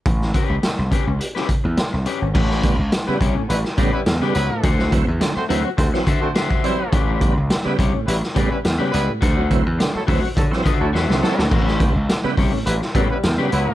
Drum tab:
CC |----------------|x---------------|----------------|----------------|
HH |x-x-x-x-x-x-x-x-|--x-x-x-x-x-x-x-|x-x-x-x-x-x-x-x-|x-x-x-x-x-x-x-x-|
SD |-o--o----o--o---|-o--o----o--o---|-o--o----o--o---|----o----o--o---|
BD |o-o---o---o-----|o-o---o---o-----|o-o-----o-o--o--|o-o---o---o-----|

CC |----------------|x---------------|
HH |x-x-x-o-x-x-----|--x-x-o-x-x-x-x-|
SD |----o----o--oooo|-o--o----o--o---|
BD |o-o---o-o-o-----|o-o---o---o-----|